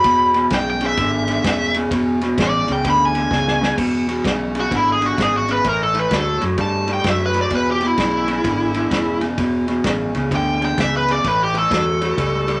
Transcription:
Already playing: B5
0.04 E1 E2 B2, kick, snare, ride
0.34 E2 B2, snare, ride
0.50 B1 E2 C#3, kick, snare, ride
0.54 G5
0.70 G5
0.81 E2 C#3, snare, ride
0.86 E5
0.97 G#1 E2 D3, kick, snare, ride
1.28 E2 D3, snare, ride
1.44 E1 E2 C#3, kick, snare, ride
1.74 E2 C#3, snare, ride
1.91 E1 E2 B2, kick, snare, ride
2.21 E2 B2, snare, ride
2.38 A1 E2 C#3, kick, snare, ride
2.42 D5
2.68 C#2 E2 C#3, snare, ride
2.72 G5
2.85 D2 E2 D3, kick, snare, ride
2.90 B5
3.05 G#5
3.14 E2 D3, snare, ride
3.31 C#2 E2 C#3, kick, snare
3.48 snare
3.61 E2 C#3, snare
3.78 E1 E2 B2, kick, snare, crash
4.08 E2 B2, snare, ride
4.24 B1 E2 C#3, kick, snare, ride
4.55 E2 C#3, snare, ride
4.60 F#4
4.71 G#1 E2 D3, kick, snare, ride
4.76 E4
4.92 G#4
5.00 E2 D3, snare, ride
5.06 F#4
5.17 G#1 E2 C#3, kick, snare, ride
5.22 G#4
5.37 F#4
5.48 E2 C#3 B4, snare, ride
5.65 A1 A2 E3 A#4, kick, snare, ride
5.83 A4
5.94 A2 E3, snare, ride
5.99 B4
6.11 D2 A2 F#3, kick, snare, ride
6.16 A4
6.41 F#2 A2 F#3, snare, ride
6.58 G2 A2 G3 A5, kick, snare, ride
6.87 A2 G3, snare, ride
6.93 G5
7.04 F#2 A2 F#3, kick, snare, ride
7.10 E5
7.26 B4
7.34 A2 F#3, snare, ride
7.41 D5
7.50 E1 E2 B2, kick, snare, ride
7.55 B4
7.71 G4
7.81 E2 B2, snare, ride
7.87 E4
7.97 B1 E2 C#3, kick, snare, ride
8.27 E2 C#3, snare, ride
8.44 G#1 E2 D3, kick, snare, ride
8.74 E2 D3, snare, ride
8.91 E1 E2 C#3, kick, snare, ride
9.21 E2 C#3, snare, ride
9.38 E1 E2 B2, kick, snare, ride
9.67 E2 B2, snare, ride
9.84 A1 E2 C#3, kick, snare, ride
10.15 C#2 E2 C#3, snare, ride
10.31 D2 E2 D3, kick, snare, ride
10.35 G5
10.61 E2 D3 G5, snare, ride
10.78 C#2 E2 C#3 E5, kick, snare, ride
10.97 B4
11.08 E2 C#3 D5, snare, ride
11.24 A1 A2 E3 B4, kick, snare, ride
11.43 G4
11.54 A2 E3, snare, ride
11.58 A4
11.71 E2 A2 F#3, kick, snare, ride
12.01 A2 F#3, snare, ride
12.17 C#2 A2 G3, kick, snare, ride
12.48 A2 G3, snare, ride

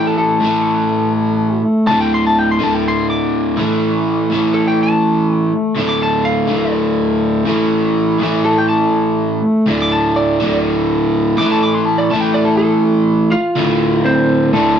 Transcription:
Already playing: A2 E3 A3
0.07 A4
0.18 A4
0.40 A2 E3 A3
1.87 D2 A2 A5
1.92 D3
2.01 G5
2.14 C6
2.27 A5
2.39 G5
2.51 C6
2.59 A2 D3
2.63 D2 A5
2.74 G5
2.88 C6
3.10 D6
3.56 A2 E3
3.60 A3
4.30 A2 E3
4.34 A3
4.54 A4
4.68 G5
4.83 A5
5.34 G5
5.75 D2 A2 D3
5.89 D6
6.03 A5
6.25 F5
6.48 D2 A2 D3
7.45 A2 E3 A3
8.19 A2 E3
8.23 A3
8.45 A4
8.58 G5
8.69 A5
9.66 D2 A2 D3
9.82 D6
9.92 A5
10.16 D5
10.40 D2 A2 D3
11.37 A2 E3 D6
11.41 A3
11.52 A5
11.63 D6
11.74 C6
11.85 A5
11.98 D5
12.10 A2 E3 A3 A5
12.21 G5
12.34 D5
12.45 A4
12.57 A4
13.31 F4 F5
13.56 D2 A2 D3
14.05 C4 C5
14.53 D2 A2 D3 A3 A4

